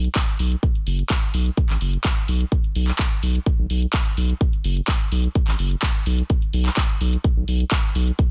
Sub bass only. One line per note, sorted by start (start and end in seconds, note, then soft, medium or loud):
0.39 0.56 B1 medium
0.87 1.03 F#1 loud
1.34 1.50 B1 medium
1.70 1.77 A1 medium
1.81 1.97 F#1 medium
2.28 2.45 B1 loud
2.76 2.92 B1 loud
3.23 3.39 B1 medium
3.59 3.66 B1 loud
3.70 3.86 B1 medium
4.17 4.34 B1 medium
4.64 4.81 F#1 loud
5.12 5.28 B1 medium
5.48 5.55 A1 medium
5.59 5.75 F#1 medium
6.06 6.22 B1 loud
6.53 6.70 B1 loud
7.01 7.17 B1 medium
7.37 7.44 B1 medium
7.48 7.64 B1 medium
7.95 8.11 B1 medium